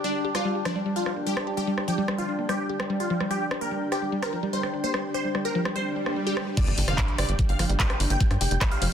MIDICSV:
0, 0, Header, 1, 9, 480
1, 0, Start_track
1, 0, Tempo, 408163
1, 48, Time_signature, 4, 2, 24, 8
1, 10502, End_track
2, 0, Start_track
2, 0, Title_t, "Supersaw synth"
2, 0, Program_c, 0, 81
2, 48, Note_on_c, 0, 62, 103
2, 211, Note_off_c, 0, 62, 0
2, 408, Note_on_c, 0, 65, 95
2, 570, Note_off_c, 0, 65, 0
2, 768, Note_on_c, 0, 62, 98
2, 930, Note_off_c, 0, 62, 0
2, 1128, Note_on_c, 0, 65, 99
2, 1290, Note_off_c, 0, 65, 0
2, 1488, Note_on_c, 0, 67, 91
2, 1650, Note_off_c, 0, 67, 0
2, 1848, Note_on_c, 0, 67, 98
2, 2010, Note_off_c, 0, 67, 0
2, 2208, Note_on_c, 0, 67, 95
2, 2370, Note_off_c, 0, 67, 0
2, 2568, Note_on_c, 0, 65, 93
2, 2730, Note_off_c, 0, 65, 0
2, 2928, Note_on_c, 0, 67, 92
2, 3090, Note_off_c, 0, 67, 0
2, 3528, Note_on_c, 0, 65, 91
2, 3690, Note_off_c, 0, 65, 0
2, 3888, Note_on_c, 0, 67, 102
2, 4050, Note_off_c, 0, 67, 0
2, 4248, Note_on_c, 0, 70, 99
2, 4410, Note_off_c, 0, 70, 0
2, 4609, Note_on_c, 0, 67, 98
2, 4771, Note_off_c, 0, 67, 0
2, 4968, Note_on_c, 0, 70, 95
2, 5130, Note_off_c, 0, 70, 0
2, 5329, Note_on_c, 0, 72, 90
2, 5491, Note_off_c, 0, 72, 0
2, 5689, Note_on_c, 0, 72, 100
2, 5851, Note_off_c, 0, 72, 0
2, 6048, Note_on_c, 0, 72, 96
2, 6210, Note_off_c, 0, 72, 0
2, 6408, Note_on_c, 0, 70, 92
2, 6570, Note_off_c, 0, 70, 0
2, 6769, Note_on_c, 0, 72, 92
2, 6931, Note_off_c, 0, 72, 0
2, 7369, Note_on_c, 0, 67, 90
2, 7531, Note_off_c, 0, 67, 0
2, 7729, Note_on_c, 0, 74, 103
2, 7891, Note_off_c, 0, 74, 0
2, 8089, Note_on_c, 0, 77, 96
2, 8251, Note_off_c, 0, 77, 0
2, 8449, Note_on_c, 0, 74, 101
2, 8611, Note_off_c, 0, 74, 0
2, 8809, Note_on_c, 0, 77, 98
2, 8971, Note_off_c, 0, 77, 0
2, 9169, Note_on_c, 0, 79, 94
2, 9331, Note_off_c, 0, 79, 0
2, 9529, Note_on_c, 0, 79, 103
2, 9691, Note_off_c, 0, 79, 0
2, 9889, Note_on_c, 0, 79, 97
2, 10051, Note_off_c, 0, 79, 0
2, 10249, Note_on_c, 0, 77, 91
2, 10411, Note_off_c, 0, 77, 0
2, 10502, End_track
3, 0, Start_track
3, 0, Title_t, "Ambient pad"
3, 0, Program_c, 1, 92
3, 0, Note_on_c, 1, 62, 74
3, 0, Note_on_c, 1, 67, 72
3, 0, Note_on_c, 1, 79, 69
3, 10502, Note_off_c, 1, 62, 0
3, 10502, Note_off_c, 1, 67, 0
3, 10502, Note_off_c, 1, 79, 0
3, 10502, End_track
4, 0, Start_track
4, 0, Title_t, "Synth drone"
4, 0, Program_c, 2, 95
4, 0, Note_on_c, 2, 62, 83
4, 7739, Note_off_c, 2, 62, 0
4, 10502, End_track
5, 0, Start_track
5, 0, Title_t, "Synth arpeggio sound"
5, 0, Program_c, 3, 84
5, 49, Note_on_c, 3, 55, 81
5, 122, Note_off_c, 3, 55, 0
5, 289, Note_on_c, 3, 67, 100
5, 338, Note_off_c, 3, 67, 0
5, 409, Note_on_c, 3, 55, 78
5, 458, Note_off_c, 3, 55, 0
5, 529, Note_on_c, 3, 55, 106
5, 578, Note_off_c, 3, 55, 0
5, 649, Note_on_c, 3, 67, 76
5, 698, Note_off_c, 3, 67, 0
5, 769, Note_on_c, 3, 53, 99
5, 798, Note_off_c, 3, 53, 0
5, 889, Note_on_c, 3, 55, 105
5, 918, Note_off_c, 3, 55, 0
5, 1009, Note_on_c, 3, 55, 97
5, 1082, Note_off_c, 3, 55, 0
5, 1249, Note_on_c, 3, 62, 77
5, 1278, Note_off_c, 3, 62, 0
5, 1369, Note_on_c, 3, 58, 77
5, 1418, Note_off_c, 3, 58, 0
5, 1489, Note_on_c, 3, 55, 85
5, 1562, Note_off_c, 3, 55, 0
5, 1728, Note_on_c, 3, 67, 102
5, 1777, Note_off_c, 3, 67, 0
5, 1848, Note_on_c, 3, 55, 72
5, 1897, Note_off_c, 3, 55, 0
5, 1968, Note_on_c, 3, 55, 97
5, 2017, Note_off_c, 3, 55, 0
5, 2089, Note_on_c, 3, 67, 80
5, 2137, Note_off_c, 3, 67, 0
5, 2209, Note_on_c, 3, 53, 97
5, 2238, Note_off_c, 3, 53, 0
5, 2328, Note_on_c, 3, 55, 99
5, 2358, Note_off_c, 3, 55, 0
5, 2448, Note_on_c, 3, 55, 104
5, 2522, Note_off_c, 3, 55, 0
5, 2688, Note_on_c, 3, 62, 76
5, 2718, Note_off_c, 3, 62, 0
5, 2808, Note_on_c, 3, 58, 78
5, 2857, Note_off_c, 3, 58, 0
5, 2929, Note_on_c, 3, 55, 83
5, 3002, Note_off_c, 3, 55, 0
5, 3168, Note_on_c, 3, 67, 99
5, 3218, Note_off_c, 3, 67, 0
5, 3289, Note_on_c, 3, 55, 79
5, 3337, Note_off_c, 3, 55, 0
5, 3408, Note_on_c, 3, 55, 103
5, 3457, Note_off_c, 3, 55, 0
5, 3528, Note_on_c, 3, 67, 71
5, 3578, Note_off_c, 3, 67, 0
5, 3649, Note_on_c, 3, 53, 105
5, 3678, Note_off_c, 3, 53, 0
5, 3768, Note_on_c, 3, 55, 98
5, 3798, Note_off_c, 3, 55, 0
5, 3888, Note_on_c, 3, 55, 106
5, 3962, Note_off_c, 3, 55, 0
5, 4128, Note_on_c, 3, 62, 72
5, 4158, Note_off_c, 3, 62, 0
5, 4248, Note_on_c, 3, 58, 79
5, 4297, Note_off_c, 3, 58, 0
5, 4368, Note_on_c, 3, 55, 84
5, 4442, Note_off_c, 3, 55, 0
5, 4608, Note_on_c, 3, 67, 105
5, 4657, Note_off_c, 3, 67, 0
5, 4728, Note_on_c, 3, 55, 79
5, 4777, Note_off_c, 3, 55, 0
5, 4848, Note_on_c, 3, 55, 100
5, 4897, Note_off_c, 3, 55, 0
5, 4969, Note_on_c, 3, 67, 78
5, 5018, Note_off_c, 3, 67, 0
5, 5089, Note_on_c, 3, 53, 104
5, 5118, Note_off_c, 3, 53, 0
5, 5209, Note_on_c, 3, 55, 107
5, 5238, Note_off_c, 3, 55, 0
5, 5328, Note_on_c, 3, 55, 100
5, 5402, Note_off_c, 3, 55, 0
5, 5569, Note_on_c, 3, 62, 78
5, 5598, Note_off_c, 3, 62, 0
5, 5689, Note_on_c, 3, 58, 72
5, 5738, Note_off_c, 3, 58, 0
5, 5809, Note_on_c, 3, 55, 81
5, 5882, Note_off_c, 3, 55, 0
5, 6049, Note_on_c, 3, 67, 92
5, 6097, Note_off_c, 3, 67, 0
5, 6169, Note_on_c, 3, 55, 78
5, 6218, Note_off_c, 3, 55, 0
5, 6289, Note_on_c, 3, 55, 98
5, 6338, Note_off_c, 3, 55, 0
5, 6409, Note_on_c, 3, 67, 74
5, 6458, Note_off_c, 3, 67, 0
5, 6529, Note_on_c, 3, 53, 106
5, 6558, Note_off_c, 3, 53, 0
5, 6649, Note_on_c, 3, 55, 105
5, 6678, Note_off_c, 3, 55, 0
5, 6769, Note_on_c, 3, 55, 102
5, 6842, Note_off_c, 3, 55, 0
5, 7009, Note_on_c, 3, 62, 78
5, 7038, Note_off_c, 3, 62, 0
5, 7129, Note_on_c, 3, 58, 78
5, 7178, Note_off_c, 3, 58, 0
5, 7249, Note_on_c, 3, 55, 86
5, 7322, Note_off_c, 3, 55, 0
5, 7489, Note_on_c, 3, 67, 98
5, 7538, Note_off_c, 3, 67, 0
5, 7609, Note_on_c, 3, 55, 72
5, 7658, Note_off_c, 3, 55, 0
5, 7729, Note_on_c, 3, 55, 104
5, 7802, Note_off_c, 3, 55, 0
5, 7969, Note_on_c, 3, 62, 75
5, 7998, Note_off_c, 3, 62, 0
5, 8089, Note_on_c, 3, 58, 79
5, 8138, Note_off_c, 3, 58, 0
5, 8209, Note_on_c, 3, 55, 85
5, 8282, Note_off_c, 3, 55, 0
5, 8449, Note_on_c, 3, 67, 104
5, 8498, Note_off_c, 3, 67, 0
5, 8569, Note_on_c, 3, 55, 79
5, 8617, Note_off_c, 3, 55, 0
5, 8689, Note_on_c, 3, 55, 103
5, 8738, Note_off_c, 3, 55, 0
5, 8809, Note_on_c, 3, 67, 82
5, 8858, Note_off_c, 3, 67, 0
5, 8929, Note_on_c, 3, 53, 105
5, 8958, Note_off_c, 3, 53, 0
5, 9049, Note_on_c, 3, 55, 108
5, 9078, Note_off_c, 3, 55, 0
5, 9169, Note_on_c, 3, 55, 107
5, 9242, Note_off_c, 3, 55, 0
5, 9409, Note_on_c, 3, 62, 80
5, 9438, Note_off_c, 3, 62, 0
5, 9529, Note_on_c, 3, 58, 77
5, 9578, Note_off_c, 3, 58, 0
5, 9649, Note_on_c, 3, 55, 85
5, 9722, Note_off_c, 3, 55, 0
5, 9889, Note_on_c, 3, 67, 95
5, 9937, Note_off_c, 3, 67, 0
5, 10008, Note_on_c, 3, 55, 79
5, 10057, Note_off_c, 3, 55, 0
5, 10129, Note_on_c, 3, 55, 104
5, 10178, Note_off_c, 3, 55, 0
5, 10248, Note_on_c, 3, 67, 77
5, 10297, Note_off_c, 3, 67, 0
5, 10369, Note_on_c, 3, 53, 108
5, 10398, Note_off_c, 3, 53, 0
5, 10502, End_track
6, 0, Start_track
6, 0, Title_t, "Analog synth bass"
6, 0, Program_c, 4, 38
6, 7849, Note_on_c, 4, 31, 75
6, 7927, Note_off_c, 4, 31, 0
6, 7969, Note_on_c, 4, 31, 94
6, 8047, Note_off_c, 4, 31, 0
6, 8089, Note_on_c, 4, 31, 83
6, 8167, Note_off_c, 4, 31, 0
6, 8449, Note_on_c, 4, 31, 96
6, 8527, Note_off_c, 4, 31, 0
6, 8569, Note_on_c, 4, 31, 82
6, 8647, Note_off_c, 4, 31, 0
6, 8809, Note_on_c, 4, 31, 80
6, 8887, Note_off_c, 4, 31, 0
6, 8928, Note_on_c, 4, 31, 92
6, 9007, Note_off_c, 4, 31, 0
6, 9048, Note_on_c, 4, 31, 83
6, 9127, Note_off_c, 4, 31, 0
6, 9408, Note_on_c, 4, 31, 98
6, 9487, Note_off_c, 4, 31, 0
6, 9529, Note_on_c, 4, 31, 88
6, 9607, Note_off_c, 4, 31, 0
6, 9769, Note_on_c, 4, 43, 78
6, 9847, Note_off_c, 4, 43, 0
6, 9889, Note_on_c, 4, 29, 94
6, 9968, Note_off_c, 4, 29, 0
6, 10009, Note_on_c, 4, 29, 82
6, 10087, Note_off_c, 4, 29, 0
6, 10369, Note_on_c, 4, 29, 97
6, 10447, Note_off_c, 4, 29, 0
6, 10502, End_track
7, 0, Start_track
7, 0, Title_t, "Impact"
7, 0, Program_c, 5, 103
7, 7729, Note_on_c, 5, 60, 80
7, 9649, Note_off_c, 5, 60, 0
7, 10502, End_track
8, 0, Start_track
8, 0, Title_t, "Swell"
8, 0, Program_c, 6, 103
8, 6769, Note_on_c, 6, 60, 80
8, 7729, Note_off_c, 6, 60, 0
8, 10502, End_track
9, 0, Start_track
9, 0, Title_t, "Drums"
9, 409, Note_on_c, 9, 37, 40
9, 526, Note_off_c, 9, 37, 0
9, 769, Note_on_c, 9, 37, 82
9, 886, Note_off_c, 9, 37, 0
9, 1249, Note_on_c, 9, 37, 38
9, 1366, Note_off_c, 9, 37, 0
9, 1609, Note_on_c, 9, 37, 79
9, 1726, Note_off_c, 9, 37, 0
9, 2089, Note_on_c, 9, 37, 42
9, 2206, Note_off_c, 9, 37, 0
9, 2448, Note_on_c, 9, 37, 86
9, 2566, Note_off_c, 9, 37, 0
9, 2929, Note_on_c, 9, 37, 40
9, 3046, Note_off_c, 9, 37, 0
9, 3289, Note_on_c, 9, 37, 83
9, 3406, Note_off_c, 9, 37, 0
9, 3769, Note_on_c, 9, 37, 39
9, 3886, Note_off_c, 9, 37, 0
9, 4129, Note_on_c, 9, 37, 79
9, 4246, Note_off_c, 9, 37, 0
9, 4609, Note_on_c, 9, 37, 42
9, 4726, Note_off_c, 9, 37, 0
9, 4969, Note_on_c, 9, 37, 85
9, 5086, Note_off_c, 9, 37, 0
9, 5449, Note_on_c, 9, 37, 39
9, 5566, Note_off_c, 9, 37, 0
9, 5809, Note_on_c, 9, 37, 75
9, 5926, Note_off_c, 9, 37, 0
9, 6289, Note_on_c, 9, 37, 40
9, 6406, Note_off_c, 9, 37, 0
9, 6649, Note_on_c, 9, 37, 77
9, 6766, Note_off_c, 9, 37, 0
9, 7129, Note_on_c, 9, 37, 37
9, 7247, Note_off_c, 9, 37, 0
9, 7489, Note_on_c, 9, 37, 76
9, 7607, Note_off_c, 9, 37, 0
9, 7729, Note_on_c, 9, 36, 119
9, 7729, Note_on_c, 9, 42, 101
9, 7729, Note_on_c, 9, 49, 104
9, 7846, Note_off_c, 9, 36, 0
9, 7847, Note_off_c, 9, 42, 0
9, 7847, Note_off_c, 9, 49, 0
9, 7849, Note_on_c, 9, 42, 43
9, 7967, Note_off_c, 9, 42, 0
9, 7969, Note_on_c, 9, 46, 108
9, 8087, Note_off_c, 9, 46, 0
9, 8089, Note_on_c, 9, 37, 37
9, 8089, Note_on_c, 9, 42, 41
9, 8207, Note_off_c, 9, 37, 0
9, 8207, Note_off_c, 9, 42, 0
9, 8209, Note_on_c, 9, 36, 120
9, 8209, Note_on_c, 9, 39, 127
9, 8209, Note_on_c, 9, 42, 103
9, 8326, Note_off_c, 9, 36, 0
9, 8327, Note_off_c, 9, 39, 0
9, 8327, Note_off_c, 9, 42, 0
9, 8329, Note_on_c, 9, 42, 42
9, 8447, Note_off_c, 9, 42, 0
9, 8449, Note_on_c, 9, 37, 78
9, 8449, Note_on_c, 9, 46, 116
9, 8567, Note_off_c, 9, 37, 0
9, 8567, Note_off_c, 9, 46, 0
9, 8569, Note_on_c, 9, 42, 43
9, 8687, Note_off_c, 9, 42, 0
9, 8689, Note_on_c, 9, 36, 124
9, 8689, Note_on_c, 9, 42, 96
9, 8806, Note_off_c, 9, 36, 0
9, 8807, Note_off_c, 9, 42, 0
9, 8809, Note_on_c, 9, 42, 42
9, 8927, Note_off_c, 9, 42, 0
9, 8929, Note_on_c, 9, 37, 38
9, 8929, Note_on_c, 9, 46, 102
9, 9047, Note_off_c, 9, 37, 0
9, 9047, Note_off_c, 9, 46, 0
9, 9049, Note_on_c, 9, 42, 42
9, 9167, Note_off_c, 9, 42, 0
9, 9169, Note_on_c, 9, 36, 115
9, 9169, Note_on_c, 9, 39, 127
9, 9169, Note_on_c, 9, 42, 99
9, 9286, Note_off_c, 9, 36, 0
9, 9287, Note_off_c, 9, 39, 0
9, 9287, Note_off_c, 9, 42, 0
9, 9289, Note_on_c, 9, 37, 81
9, 9289, Note_on_c, 9, 42, 43
9, 9407, Note_off_c, 9, 37, 0
9, 9407, Note_off_c, 9, 42, 0
9, 9409, Note_on_c, 9, 46, 107
9, 9527, Note_off_c, 9, 46, 0
9, 9529, Note_on_c, 9, 42, 41
9, 9647, Note_off_c, 9, 42, 0
9, 9649, Note_on_c, 9, 36, 126
9, 9649, Note_on_c, 9, 42, 96
9, 9766, Note_off_c, 9, 36, 0
9, 9767, Note_off_c, 9, 42, 0
9, 9769, Note_on_c, 9, 37, 40
9, 9769, Note_on_c, 9, 42, 43
9, 9887, Note_off_c, 9, 37, 0
9, 9887, Note_off_c, 9, 42, 0
9, 9889, Note_on_c, 9, 46, 108
9, 10006, Note_off_c, 9, 46, 0
9, 10009, Note_on_c, 9, 42, 41
9, 10127, Note_off_c, 9, 42, 0
9, 10129, Note_on_c, 9, 36, 121
9, 10129, Note_on_c, 9, 37, 82
9, 10129, Note_on_c, 9, 39, 127
9, 10129, Note_on_c, 9, 42, 96
9, 10246, Note_off_c, 9, 36, 0
9, 10246, Note_off_c, 9, 37, 0
9, 10246, Note_off_c, 9, 39, 0
9, 10246, Note_off_c, 9, 42, 0
9, 10249, Note_on_c, 9, 42, 39
9, 10366, Note_off_c, 9, 42, 0
9, 10369, Note_on_c, 9, 46, 110
9, 10486, Note_off_c, 9, 46, 0
9, 10502, End_track
0, 0, End_of_file